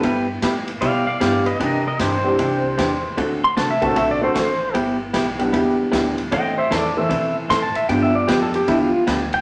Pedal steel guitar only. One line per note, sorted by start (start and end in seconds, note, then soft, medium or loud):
0.00 0.28 B4 medium
0.81 1.05 D5 medium
0.81 1.06 F5 loud
1.07 1.19 D5 medium
1.07 1.20 F5 medium
1.20 1.44 D5 medium
1.20 1.45 F5 medium
1.46 1.59 B4 medium
1.46 1.60 D#5 medium
1.62 1.85 A#4 medium
1.62 1.86 D#5 medium
1.87 2.00 A#4 medium
1.87 2.00 D#5 medium
2.02 3.15 C5 loud
3.44 3.56 C6 loud
3.57 3.70 A5 medium
3.71 3.83 E5 medium
3.83 3.96 A5 medium
3.97 4.09 E5 loud
4.11 4.23 D5 medium
4.24 4.36 C5 medium
4.37 4.75 C5 loud
6.33 6.57 D#5 medium
6.33 6.57 G5 loud
6.58 6.72 C5 medium
6.58 6.72 E5 medium
6.73 6.96 A4 medium
6.73 6.97 D5 medium
6.98 7.35 E5 loud
7.50 7.62 C6 loud
7.62 7.76 A5 medium
7.76 7.89 E5 medium
7.89 8.02 G5 medium
8.03 8.15 E5 medium
8.15 8.28 D5 medium
8.28 8.41 G4 loud
8.42 8.55 A4 medium
8.56 8.68 G4 medium
8.69 8.81 E4 medium
8.82 9.03 F4 medium
9.34 9.41 G5 loud